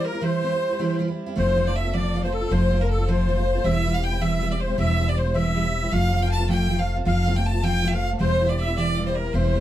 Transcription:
Already playing: G3 C4 E4
0.05 A#4
0.12 G3 C4 E4
0.21 E3 G3 C4 E4 C5
0.42 E3 G3 C4 E4
0.52 G3 C4 E4
0.70 G3 C4 E4
0.79 E3 G3 C4 E4
0.99 E3 G3 C4 E4
1.08 G3 C4 E4
1.26 G3 C4 E4
1.36 F1 F3 A3 C4 F4 C5
1.56 F3 A3 C4 F4
1.65 A3 C4 F4 D5
1.76 E5
1.84 A3 C4 F4
1.93 F3 A3 C4 F4 D5
2.14 F3 A3 C4 F4
2.23 A3 C4 F4 C5
2.33 A4
2.42 A3 C4 F4
2.50 F1 F3 A3 C4 F4 C5
2.71 F3 A3 C4 F4
2.80 A3 C4 F4 A#4
2.90 A4
2.98 A3 C4 F4
3.08 F3 A3 C4 F4 C5
3.27 F3 A3 C4 F4
3.37 A3 C4 F4
3.55 A3 C4 F4
3.64 E1 E3 G3 C4 E4 E5
3.84 E3 G3 C4 E4
3.92 G3 C4 E4 F5
4.03 G5
4.12 G3 C4 E4
4.20 E3 G3 C4 E4 E5
4.40 E3 G3 C4 E4
4.50 G3 C4 E4 D5
4.60 C5
4.68 G3 C4 E4
4.77 E1 E3 G3 C4 E4 E5
4.97 E3 G3 C4 E4
5.06 G3 C4 E4 D5
5.17 C5
5.25 G3 C4 E4
5.34 E3 G3 C4 E4 E5
5.55 E3 G3 C4 E4
5.64 G3 C4 E4
5.82 G3 C4 E4
5.91 F1 F3 A3 C4 F4 F5
6.12 F3 A3 C4 F4
6.21 A3 C4 F4 G5
6.31 A5
6.39 A3 C4 F4
6.48 F3 A3 C4 F4 G5
6.68 F3 A3 C4 F4
6.77 A3 C4 F4 F5
6.96 A3 C4 F4
7.05 F1 F3 A3 C4 F4 F5
7.26 F3 A3 C4 F4
7.35 A3 C4 F4 G5
7.46 A5
7.53 A3 C4 F4
7.63 F3 A3 C4 F4 G5
7.82 F3 A3 C4 F4
7.88 E5
7.92 A3 C4 F4 F5
8.10 A3 C4 F4
8.19 E1 E3 G3 C4 E4 C5
8.39 E3 G3 C4 E4
8.47 C4 E4 D5 E5
8.51 G3 D5
8.59 E5
8.68 G3 C4 E4
8.77 E3 G3 C4 E4 D5
8.97 E3 G3 C4 E4
9.06 G3 C4 E4 C5
9.15 A#4
9.25 G3 C4 E4
9.33 E1 E3 G3 C4 E4 C5
9.54 E3 G3 C4 E4

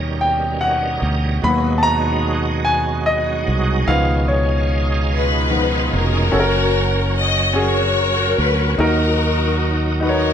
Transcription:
Already playing: D#2 B2 G3 B3 C#4 D#4 A#4
0.21 G5
0.61 F#5
1.02 D2
1.42 D#2 F#3 G#3 A#3 B3 F#4 B5
1.78 A5
1.83 A#5
2.65 G#5
3.06 D#5
3.48 C2
3.87 C#2 D#3 F3 B3 C#4 F5
4.28 C#5
5.13 D#4 F4 B4
5.50 D#3 F3 B3
5.93 F1 C#4 F#4 A#4
6.31 F#1 F#3 C#4 F#4 A4
6.40 A#4
7.18 D#5
7.54 C#4 F#4 G#4
7.59 F#4 A#4 C#5
8.38 D2 B4
8.78 D#2 D#3 D#4 F#4 A#4
10.00 D#4 F#4 B4
10.04 A#4
10.09 C#5

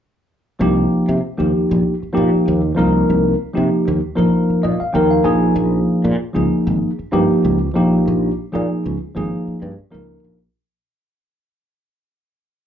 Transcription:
0.59 C2 F3 A#3 D#4 G4
1.09 C3
1.37 D#2 F3 A#3 D#4 G4
1.71 A#1
2.03 muted fretless electric bass stroke
2.13 F3 A#3 D#4 G4
2.17 A#2
2.34 muted fretless electric bass stroke
2.48 D#2
2.75 C2 F3 A#3 D#4 A#4
3.10 C2
3.54 C3 F3 A#3 D#4 G4
3.88 D#2
4.16 A#1 F3 A#3 D#4 A#4
4.50 muted fretless electric bass stroke
4.63 A#2 D#5
4.80 F5, muted fretless electric bass stroke
4.93 D#2 F3 A#3 D#4 A#4 G5
5.11 F5
5.23 A#1 F3 A#3 D#4 G#4 G#5
5.56 A#1
6.04 A#2
6.33 C#2 F3 A#3 D#4 G#4
6.67 G#1
6.99 muted fretless electric bass stroke
7.12 G2 F3 A#3 D#4 G4
7.30 muted fretless electric bass stroke
7.45 C#2
7.74 A#1 F3 A#3 D#4 G4
8.08 A#1
8.52 A#2 F3 A#3 D#4 G#4
8.86 C#2
9.15 G#1 F3 A#3 D#4 G#4
9.48 muted fretless electric bass stroke
9.62 G2
9.78 muted fretless electric bass stroke
9.90 C#2 F3 A#3 D#4 A#4
10.24 A#1

